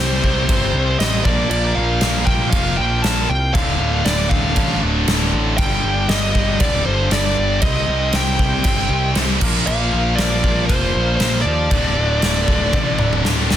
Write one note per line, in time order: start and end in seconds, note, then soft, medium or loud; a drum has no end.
0.00 0.20 C2 medium
0.00 0.46 C3 medium
0.00 0.48 G3 medium
0.00 0.48 C4 loud
0.00 1.24 C4 medium
0.00 1.24 G4 medium
0.00 0.97 C5 loud
0.00 1.24 D5 medium
0.23 0.46 C2 medium
0.23 1.24 C3 medium
0.23 1.25 G3 medium
0.23 1.24 C4 medium
0.23 kick medium
0.48 0.72 G1 medium
0.48 1.23 C3 medium
0.48 1.24 G3 medium
0.48 1.25 C4 medium
0.48 kick loud
0.48 crash medium
0.73 0.96 C2 loud
0.99 1.22 A1 medium
0.99 1.24 D#5 medium
0.99 snare loud
0.99 crash medium
1.24 1.48 A#1 medium
1.24 2.25 A#2 medium
1.24 2.27 F3 medium
1.24 2.25 A#3 loud
1.24 3.54 A#3 medium
1.24 3.54 F4 medium
1.24 3.54 C5 medium
1.24 1.49 D5 medium
1.24 kick loud
1.49 1.72 A#1 loud
1.49 1.75 D5 loud
1.49 crash medium
1.75 1.99 A#1 medium
1.75 2.23 F5 loud
2.01 2.25 A#1 medium
2.01 3.28 A#2 medium
2.01 3.28 F3 medium
2.01 3.29 A#3 medium
2.01 snare loud
2.01 crash medium
2.26 2.50 A#1 medium
2.26 3.29 A#2 medium
2.26 3.28 F3 medium
2.26 3.28 A#3 medium
2.26 2.50 G5 loud
2.26 kick medium
2.50 2.75 F1 medium
2.50 2.77 F5 loud
2.50 kick loud
2.50 crash medium
2.77 3.01 A#1 loud
2.77 3.02 G5 loud
3.02 3.27 A#1 medium
3.02 3.30 A5 loud
3.02 snare loud
3.02 crash medium
3.29 3.52 C2 medium
3.29 3.53 G5 loud
3.54 3.77 D1 medium
3.54 4.54 D2 medium
3.54 4.56 A2 medium
3.54 7.59 D3 medium
3.54 4.56 D3 medium
3.54 7.59 A4 medium
3.54 5.57 D5 medium
3.54 4.07 F5 loud
3.54 kick loud
3.54 crash medium
3.80 4.03 D1 medium
4.05 4.28 D1 medium
4.05 4.29 D5 loud
4.05 snare loud
4.05 crash medium
4.29 4.54 D1 medium
4.29 5.58 A2 medium
4.29 5.57 D3 medium
4.29 4.78 F5 loud
4.29 kick medium
4.34 5.56 D2 medium
4.55 4.80 A1 medium
4.55 5.57 D2 medium
4.55 5.58 A2 medium
4.55 5.58 D3 medium
4.55 kick loud
4.55 crash medium
4.83 5.05 D1 loud
5.08 5.30 D1 medium
5.08 snare loud
5.08 crash medium
5.33 5.56 A1 medium
5.58 5.81 G1 loud
5.58 6.59 G2 medium
5.58 6.60 D3 medium
5.58 6.60 G3 medium
5.58 7.62 G3 medium
5.58 6.11 G5 loud
5.58 kick loud
5.58 crash medium
5.84 6.07 G1 medium
6.09 6.32 G1 loud
6.09 6.60 D#5 loud
6.09 snare loud
6.09 crash medium
6.34 6.58 G1 medium
6.34 7.62 G2 medium
6.34 7.62 D3 medium
6.34 7.61 G3 medium
6.34 kick medium
6.60 6.83 D1 loud
6.60 7.61 G2 medium
6.60 7.62 D3 medium
6.60 7.62 G3 medium
6.60 6.85 D5 loud
6.60 kick loud
6.60 crash medium
6.86 7.09 G1 loud
6.86 7.10 C5 medium
7.11 7.34 G1 medium
7.11 7.61 D5 medium
7.11 snare loud
7.11 crash medium
7.37 7.60 G1 medium
7.62 7.85 C2 loud
7.62 8.63 C3 medium
7.62 8.64 G3 medium
7.62 9.40 C4 medium
7.62 8.64 C4 medium
7.62 9.41 G4 medium
7.62 8.15 D#5 medium
7.62 9.41 D#5 medium
7.62 kick loud
7.62 crash medium
7.88 8.11 C2 medium
8.13 8.36 C2 loud
8.13 9.13 G5 medium
8.13 snare loud
8.13 crash medium
8.39 8.62 C2 medium
8.39 9.40 C3 medium
8.39 9.41 G3 medium
8.39 9.40 C4 loud
8.39 kick medium
8.64 8.88 G1 loud
8.64 9.40 C3 medium
8.64 9.40 G3 medium
8.64 9.41 C4 medium
8.64 kick loud
8.64 crash medium
8.90 9.13 C2 loud
9.15 9.38 C2 medium
9.15 snare loud
9.15 crash medium
9.40 9.64 A#1 medium
9.40 10.42 A#2 medium
9.40 10.44 F3 loud
9.40 10.43 A#3 loud
9.40 11.70 A#3 medium
9.40 11.70 F4 medium
9.40 11.70 C5 medium
9.40 kick loud
9.40 crash loud
9.67 9.90 A#1 loud
9.67 10.20 F5 loud
9.67 crash medium
9.93 10.15 A#1 medium
10.16 10.41 A#1 medium
10.16 11.44 A#2 medium
10.16 11.72 F3 medium
10.16 10.66 D5 loud
10.16 snare loud
10.16 crash medium
10.21 11.46 A#3 medium
10.44 10.66 A#1 medium
10.44 11.45 A#2 medium
10.44 11.72 F3 medium
10.44 11.44 A#3 medium
10.44 kick medium
10.66 10.92 F1 loud
10.66 11.15 C5 loud
10.66 kick loud
10.66 crash medium
10.95 11.17 A#1 loud
11.16 11.43 A#1 medium
11.16 11.41 C5 loud
11.16 snare loud
11.16 crash medium
11.42 11.68 D#2 medium
11.42 13.18 D5 medium
11.71 11.94 D1 loud
11.71 12.72 D2 medium
11.71 12.72 A2 medium
11.71 12.73 D3 loud
11.71 13.57 D4 medium
11.71 13.57 A4 medium
11.71 13.57 D5 medium
11.71 kick loud
11.71 crash medium
11.97 12.19 D1 medium
12.22 12.45 D1 medium
12.22 snare loud
12.22 crash medium
12.47 12.71 D1 medium
12.47 13.57 D2 medium
12.47 13.57 A2 medium
12.47 13.57 D3 medium
12.47 kick medium
12.73 12.96 A1 loud
12.73 13.57 D2 medium
12.73 13.57 A2 medium
12.73 13.57 D3 medium
12.73 kick loud
12.73 high tom medium
12.99 13.22 D1 loud
12.99 mid tom medium
13.13 mid tom medium
13.25 13.47 D1 medium
13.25 snare medium
13.51 13.57 D1 medium
13.51 snare loud